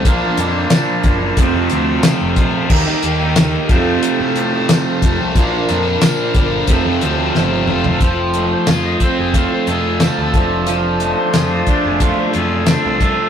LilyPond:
<<
  \new Staff \with { instrumentName = "Tonewheel organ" } { \time 4/4 \key f \mixolydian \tempo 4 = 90 <d' f' bes' f''>2 <c' f' a' f''>2 | <ees' g' bes' g''>4. <c' f' a' f''>2~ <c' f' a' f''>8 | \tuplet 3/2 { <ees' ges' b' ges''>8 <d' f' bes' f''>4~ } <d' f' bes' f''>4 <c' f' a' f''>2 | r8 ees''16 c''16 aes'16 ees''16 c''16 aes'16 f'16 c''16 aes'8 a'4 |
r8 ees''16 c''16 aes'16 ees''16 c''16 aes'16 f'16 c''16 aes'8 a'4 | }
  \new Staff \with { instrumentName = "Tonewheel organ" } { \time 4/4 \key f \mixolydian r1 | r1 | r1 | <f a c'>8 r2. <f a d'>8~ |
<f a d'>2 <f a d'>8 r4. | }
  \new Staff \with { instrumentName = "Overdriven electric guitar" } { \time 4/4 \key f \mixolydian <bes, f bes d'>16 <f bes d'>16 <bes, f bes d'>16 <f bes d'>16 <bes, f bes d'>8 <bes, f bes d'>8 <f, c f a c'>16 <f a c'>16 <c f a c'>16 <f a c'>16 <f, c f a c'>8 <c f a c'>16 <f a c'>16 | <ees g bes ees'>16 <g bes ees'>16 <ees g bes ees'>16 <g bes ees'>16 <ees g bes ees'>8 <f, c f a c'>8. <f a c'>16 <c f a c'>16 <f a c'>16 <f, c f a c'>8 <c f a c'>16 <f a c'>16 | <bes, f bes d'>16 <f bes d'>16 <bes, f bes d'>16 <f bes d'>16 <bes, f bes d'>8 <bes, f bes d'>8 <f, c f a c'>16 <f a c'>16 <c f a c'>16 <f a c'>16 <f, c f a c'>8 <c f a c'>16 <f a c'>16 | f8 a8 f'8 c'8 a8 f'8 c'8 f8 |
f8 a8 f'8 d'8 a8 f'8 d'8 f'8 | }
  \new Staff \with { instrumentName = "Overdriven electric guitar" } { \clef bass \time 4/4 \key f \mixolydian <bes, f bes>2 <f, c f>2 | <ees bes ees'>4. <f, c f>2~ <f, c f>8 | <bes, f bes>2 <f, c f>2 | f4 f'8 c'8 f'8 a8 f8 f8 |
f4 f'8 d'8 f'8 a8 f8 a8 | }
  \new Staff \with { instrumentName = "Picked electric bass" } { \clef bass \time 4/4 \key f \mixolydian bes,,8 f,8 r8 ges,,8 f,,16 f,16 d,8 r16 f,,16 bes,,8 | ees,16 r16 ees,4 f,8 r16 a,4~ a,16 f,16 c,16 | bes,,8 f,8 r8 g,,8 f,,16 f,16 d,8 g,,8 f,,8 | f,,4 f,8 r16 f,,8 r16 f,8. d,16 f,,8~ |
f,,4 f,8 r16 f,,8 r16 f,8. c,8 r16 | }
  \new DrumStaff \with { instrumentName = "Drums" } \drummode { \time 4/4 <hh bd>8 hh8 <hh sn tamb>8 <hh bd>8 <hh bd>8 hh8 <hh sn tamb>8 <hh bd>8 | <cymc bd>8 hh8 <hh sn tamb>8 <hh bd>8 hh8 hh8 <hh sn tamb>8 <hh bd>8 | <hh bd>8 hh8 <hh sn tamb>8 <hh bd>8 <hh bd>8 hh8 sn8 toml16 tomfh16 | <hh bd>8 hh8 <hh sn tamb>8 <hh bd>8 <hh bd>8 hh8 <hh sn tamb>8 <hh bd>8 |
hh8 hh8 <hh sn tamb>8 <hh bd>8 <hh bd>8 hh8 <hh sn tamb>8 <hh bd>8 | }
>>